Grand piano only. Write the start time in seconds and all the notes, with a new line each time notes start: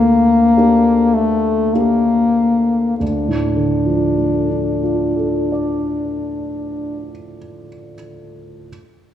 Already playing: D2
0.57 D4 G4 A#4
1.75 D4 G4 A#4
3.00 D2
3.28 A2
3.56 D3
3.86 F3
4.17 A3
4.49 D4
4.83 F4
5.16 A4
5.52 D5